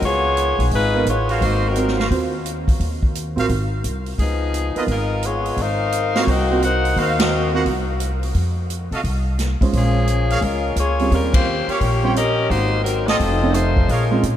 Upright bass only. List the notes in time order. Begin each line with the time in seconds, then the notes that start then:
0.02 C#2
0.59 B1
0.71 G#1
1.05 A1
1.41 G#1
2.10 D#2
2.80 D#2
3.36 A1
3.49 G#1
3.84 C2
4.18 C#2
4.76 muted upright bass stroke
4.87 G#1
5.56 G#1
6.27 C2
6.96 D#2
7.65 C2
8.35 F2
8.91 C3
9.04 C2
9.61 C2
9.73 A#1
10.41 C#2
10.76 C#2
11.11 D#2
11.68 muted upright bass stroke
11.81 A#1
12.50 G#1
13.20 F1
13.88 A#1
14.23 A#2